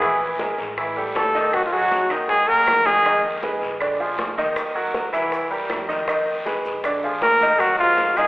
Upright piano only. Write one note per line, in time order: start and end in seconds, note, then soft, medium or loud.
0.02 0.33 E3 medium
0.02 0.33 E4 medium
0.02 0.33 E5 medium
0.40 0.71 G#3 medium
0.40 0.71 G#4 medium
0.40 0.71 A#4 medium
0.78 0.93 E3 medium
0.78 0.93 E4 medium
0.78 0.94 E5 medium
0.97 1.28 G3 medium
0.97 1.28 G4 medium
0.97 1.28 A4 medium
1.35 1.65 D#3 medium
1.35 1.65 D#4 medium
1.35 1.66 D#5 medium
1.72 2.03 F#3 medium
1.72 2.03 F#4 medium
1.72 2.03 G#4 medium
2.10 2.41 D#3 medium
2.10 2.42 D#4 medium
2.10 2.42 D#5 medium
2.48 2.79 F#3 medium
2.48 2.79 F#4 medium
2.48 2.79 G#4 medium
2.85 3.01 D#3 medium
2.85 3.01 D#4 medium
2.85 3.02 D#5 medium
3.05 3.36 D#3 medium
3.05 3.36 D#4 medium
3.05 3.37 D#5 medium
3.43 3.74 G#3 medium
3.43 3.74 G#4 medium
3.43 3.74 B4 medium
3.81 3.96 D3 medium
3.81 3.96 D4 medium
3.81 3.97 D5 medium
4.00 4.31 F3 medium
4.00 4.31 F4 medium
4.00 4.31 G#4 medium
4.37 4.69 D#3 medium
4.37 4.69 D#4 medium
4.37 4.69 D#5 medium
4.75 5.06 F#3 medium
4.75 5.07 F#4 medium
4.75 5.07 A#4 medium
5.13 5.44 E3 medium
5.13 5.44 E4 medium
5.13 5.44 E5 medium
5.50 5.82 G3 medium
5.50 5.82 G4 medium
5.50 5.82 A#4 medium
5.88 6.04 D#3 medium
5.88 6.04 D#4 medium
5.88 6.05 D#5 medium
6.08 6.39 D#3 medium
6.08 6.39 D#4 medium
6.08 6.40 D#5 medium
6.45 6.77 G#3 medium
6.45 6.77 G#4 medium
6.45 6.77 B4 medium
6.85 7.00 D3 medium
6.85 7.00 D4 medium
6.85 7.01 D5 medium
7.04 7.35 F3 medium
7.04 7.35 F4 medium
7.04 7.35 G#4 medium
7.42 7.73 D#3 medium
7.42 7.73 D#4 medium
7.42 7.73 D#5 medium
7.80 8.11 G#3 medium
7.80 8.11 F4 medium
7.80 8.11 A#4 medium
8.18 8.28 D#3 medium
8.18 8.28 D#4 medium
8.18 8.28 D#5 medium